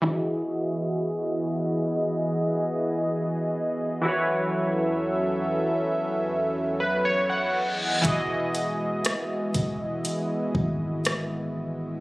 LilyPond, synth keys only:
\new Staff \with { instrumentName = "Synth keys" } { \time 4/4 \key e \major \tempo 4 = 60 << { r1 | r2 r8. b'16 cis''16 fis''8 r16 | r1 | } \\ { <e e' fis' gis'>1 | <e e' fis' b' cis''>2.~ <e e' fis' b' cis''>8 r8 | <e e' fis' gis' dis''>1 | } >> }